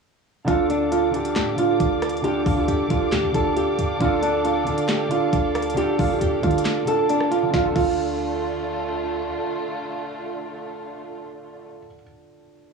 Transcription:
0.45 D2 D3 D4 F4 A4 F5 D6, kick, closed hi-hat
0.50 A4
0.70 D4, closed hi-hat
0.92 F4, closed hi-hat
1.10 D3 D4 F4, closed hi-hat
1.15 D4 G4
1.25 closed hi-hat
1.36 A2 G4, snare, clap, closed hi-hat
1.56 D3 D4 F4, closed hi-hat
1.61 A4
1.80 D2, kick, closed hi-hat
2.02 cross-stick, closed hi-hat
2.09 closed hi-hat
2.17 closed hi-hat
2.22 D3 D4 F4 G4, closed hi-hat
2.27 A4
2.46 C#2 F4, kick, open hi-hat
2.54 D3 D4 F4
2.60 A4
2.68 D2 G4, closed hi-hat
2.88 D2 D3 D4 F4, kick, closed hi-hat
2.93 G4
3.12 D3 G4, snare, clap, closed hi-hat
3.23 D2
3.32 D2 D3 D4 F4 A4, kick, closed hi-hat
3.37 A4
3.57 G4, closed hi-hat
3.79 D2, closed hi-hat
3.99 D2 D3 D4 F4, kick, closed hi-hat
4.04 A4
4.23 D4, closed hi-hat
4.45 F4, closed hi-hat
4.64 D3 D4 F4, closed hi-hat
4.69 A4
4.78 closed hi-hat
4.89 G4, snare, clap, closed hi-hat
5.09 D3 D4 F4, closed hi-hat
5.14 A4
5.33 D2, kick, closed hi-hat
5.55 cross-stick, closed hi-hat
5.62 closed hi-hat
5.70 closed hi-hat
5.74 D3 D4 F4 G4, closed hi-hat
5.80 A4
5.99 D2 F4, kick, open hi-hat
6.08 D3 D4 F4
6.13 G4
6.21 D2 G4, closed hi-hat
6.41 D3 D4 F4, kick, closed hi-hat
6.46 A4
6.51 closed hi-hat
6.58 closed hi-hat
6.65 snare, clap, closed hi-hat
6.85 D3 D4 F4 A4, closed hi-hat
6.91 A4
7.09 D4, closed hi-hat
7.21 cross-stick
7.31 F4, closed hi-hat
7.43 D3
7.50 D2 D3 A3 D4 F4, kick, snare
7.57 F4
7.64 D3 A4
7.72 D2 D4 F4, kick, crash
7.79 F4
7.87 A4

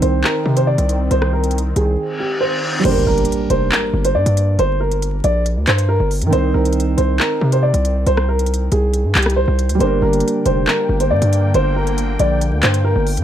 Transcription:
Already playing: D#3 C4 D#4 C5 G5
0.02 C2 C5, closed hi-hat
0.24 A#4, clap
0.46 C3
0.57 C5, closed hi-hat
0.67 D5
0.78 C2, closed hi-hat
0.89 closed hi-hat
1.11 C2 C5, closed hi-hat
1.22 cross-stick
1.33 A#4
1.44 closed hi-hat
1.51 closed hi-hat
1.58 closed hi-hat
1.76 C2 G#4, closed hi-hat
1.98 reverse cymbal
2.20 G4
2.41 C5
2.80 G3 A#3
2.85 G1 D4 C5, closed hi-hat, crash, impact
2.91 A#4
3.07 G1 A#4
3.18 closed hi-hat
3.25 closed hi-hat
3.32 closed hi-hat
3.50 F1 C5, closed hi-hat
3.72 A#4, clap
3.94 G1
4.05 C5, closed hi-hat
4.15 G2 D5
4.26 G2, closed hi-hat
4.37 closed hi-hat
4.59 G1 C5, closed hi-hat
4.80 A#4
4.91 closed hi-hat
5.02 closed hi-hat
5.24 A#1 D5, closed hi-hat
5.46 closed hi-hat
5.57 D2
5.67 G2 C5, clap, closed hi-hat
5.78 closed hi-hat
5.89 A#4
6.00 G1
6.11 open hi-hat
6.22 G2, closed hi-hat
6.26 D#3 C4
6.33 C2 D#4 C5, closed hi-hat
6.38 C5
6.54 C2 A#4
6.65 closed hi-hat
6.73 closed hi-hat
6.80 closed hi-hat
6.97 C2 C5, closed hi-hat
7.20 A#4, clap
7.41 C3
7.52 C5, closed hi-hat
7.63 D5
7.74 C2, closed hi-hat
7.85 closed hi-hat
8.07 C2 C5, closed hi-hat
8.17 cross-stick
8.29 A#4
8.39 closed hi-hat
8.46 closed hi-hat
8.54 closed hi-hat
8.72 C2 G#4, closed hi-hat
8.93 closed hi-hat
9.04 G2
9.15 C2 G4, clap, closed hi-hat
9.22 cross-stick, closed hi-hat
9.30 closed hi-hat
9.36 C5
9.48 C2
9.59 closed hi-hat
9.69 D2, closed hi-hat
9.75 G3 A#3
9.80 G1 D3 A#3 D4 C5 G5, closed hi-hat
9.87 A#4
10.02 G1 A#4
10.13 closed hi-hat
10.20 closed hi-hat
10.28 closed hi-hat
10.46 F1 C5, closed hi-hat
10.67 A#4, clap
10.89 G1
11.00 C5, closed hi-hat
11.11 G2 D5
11.22 G2, closed hi-hat
11.33 closed hi-hat
11.54 G1 C5, closed hi-hat
11.76 A#4
11.87 closed hi-hat
11.98 closed hi-hat
12.19 A#1 D5, closed hi-hat
12.41 closed hi-hat
12.52 D2
12.63 G2 C5, clap, closed hi-hat
12.74 closed hi-hat
12.84 A#4
12.96 G1
13.07 open hi-hat
13.17 G2, closed hi-hat

